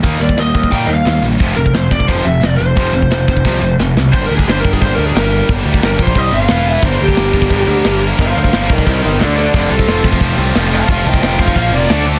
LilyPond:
<<
  \new Staff \with { instrumentName = "Lead electric guitar" } { \time 4/4 \key g \dorian \tempo 4 = 177 r8 d''8 ees''4 g''8 ees''16 f''8. r8 | r8 bes'8 c''8 d''8 c''8 e''8 d''8 c''8~ | c''2. r4 | \tuplet 3/2 { c''8 bes'8 aes'8 c''8 bes'8 aes'8 c''8 bes'8 aes'8 } bes'4 |
r4 bes'8 c''8 ees''8 f''4 e''8 | c''8 g'2. r8 | <c'' f''>8 <c'' f''>8 <c'' f''>8 <bes' ees''>8 <bes' ees''>8 <bes' ees''>8 <a' d''>8 <a' d''>8 | <a' d''>8 a'4 r2 <f'' a''>8 |
<f'' a''>8 <ees'' g''>8 <ees'' g''>8 <c'' f''>8 <c'' f''>8 d''4 r8 | }
  \new Staff \with { instrumentName = "Distorted electric guitar" } { \time 4/4 \key g \dorian <ees g bes>8 <ees g>8 <ees g>8 <ees g>8 <ees g bes>8 <ees g>8 <ees g>8 <ees g>8 | <f, c f>8 <f, c>8 <f, c>8 <f, c>8 <f, c f>8 <f, c>8 <f, c>8 <f, c>8 | <f, c f>8 <f, c>8 <f, c>8 <f, c>8 <f, c f>8 <f, c>8 <f, c>8 <f, c>8 | <g bes d' g'>8 <g bes d' g'>8 <g bes d' g'>8 <g bes d' g'>8 <g bes d' g'>8 <g bes d' g'>8 <g bes d' g'>8 <g bes d' g'>8 |
<g bes d' g'>8 <g bes d' g'>8 <g bes d' g'>8 <g bes d' g'>8 <c g c' g'>8 <c g c' g'>8 <e b e' b'>8 <e b e' b'>8 | <g, d g bes d' bes'>8 <g, d g bes d' bes'>8 <g, d g bes d' bes'>8 <g, d g bes d' bes'>8 <g, d g bes d' bes'>8 <g, d g bes d' bes'>8 <g, d g bes d' bes'>8 <g, d g bes d' bes'>8 | <g, d g bes d' bes'>8 <g, d g bes d' bes'>8 <g, d g bes d' bes'>8 <g, d g bes d' bes'>8 <c g c' g'>8 <c g c' g'>8 <d a d' a'>8 <d a d' a'>8 | <f a c' f'>8 <f a c' f'>8 <f a c' f'>8 <f a c' f'>8 <f a c' f'>8 <f a c' f'>8 <f a c' f'>8 <f a c' f'>8 |
<f a c' f'>8 <f a c' f'>8 <f a c' f'>8 <f a c' f'>8 <bes, f bes f'>8 <bes, f bes f'>8 <d a d' a'>8 <d a d' a'>8 | }
  \new Staff \with { instrumentName = "Distorted electric guitar" } { \clef bass \time 4/4 \key g \dorian <ees bes ees'>8 <ees bes>8 <ees bes>8 <ees bes>8 <ees bes ees'>8 <ees bes>8 <ees bes>8 <ees bes>8 | <f, c f>8 <f, c>8 <f, c>8 <f, c>8 <f, c f>8 <f, c>8 <f, c>8 <f, c>8 | <f, c f>8 <f, c>8 <f, c>8 <f, c>8 <f, c f>8 <f, c>8 <f, c>8 <f, c>8 | r1 |
r1 | r1 | r1 | <f, c f>8 <f, c f>8 <f, c f>8 <f, c f>8 <f, c f>8 <f, c f>8 <f, c f>8 <f, c f>8 |
<f, c f>8 <f, c f>8 <f, c f>8 <f, c f>8 <bes, f bes>8 <bes, f bes>8 <d a d'>8 <d a d'>8 | }
  \new Staff \with { instrumentName = "Picked electric bass" } { \clef bass \time 4/4 \key g \dorian ees,8 ees,8 ees,8 ees,8 bes,8 ees,8 ees,8 bes,,8 | f,,8 f,,8 f,,8 f,,8 f,,8 f,,8 f,,8 f,,8 | f,,8 f,,8 f,,8 f,,8 c,8 f,,8 f,,8 c,8 | g,,8 d,8 g,,8 g,,8 g,,8 d,8 g,,4 |
g,,8 d,8 g,,8 bes,,8 c,8 g,,8 e,,4 | g,,8 d,8 g,,8 g,,8 g,,8 d,8 g,,4 | g,,8 d,8 g,,8 b,,8 c,8 g,,8 d,4 | f,,8 c,8 f,,8 f,,8 f,,8 c,8 f,,4 |
f,,8 c,8 f,,8 f,,8 bes,,8 f,,8 d,4 | }
  \new DrumStaff \with { instrumentName = "Drums" } \drummode { \time 4/4 <hho bd>8. bd16 <hho sn>8 bd16 bd16 <hho bd>4 <hho sn>4 | <hho bd>8. bd16 <hho sn>8 bd16 bd16 <hho bd>4 <hho sn>4 | <hho bd>8. bd16 <hho sn>8 bd16 bd16 <bd sn>4 sn8 sn8 | <cymc bd>8 cymc16 bd16 <cymc sn>8 <cymc bd>16 bd16 <cymc bd>8 cymc8 <cymc sn>8 cymc8 |
<cymc bd>8 cymc16 bd16 <cymc sn>8 <cymc bd>16 bd16 <cymc bd>8 cymc8 <cymc sn>8 cymc8 | <cymc bd>8 cymc16 bd16 <cymc sn>8 <cymc bd>16 bd16 <cymc bd>8 cymc8 <cymc sn>8 cymc8 | <cymc bd>8 cymc16 bd16 <cymc sn>8 <cymc bd>16 bd16 <cymc bd>8 cymc8 <cymc sn>8 cymc8 | <cymc bd>8 cymc16 bd16 <cymc sn>8 <cymc bd>16 bd16 <cymc bd>8 cymc8 <cymc sn>8 cymc8 |
<cymc bd>8 cymc16 bd16 <cymc sn>8 <cymc bd>16 bd16 <cymc bd>8 cymc8 <cymc sn>8 cymc8 | }
>>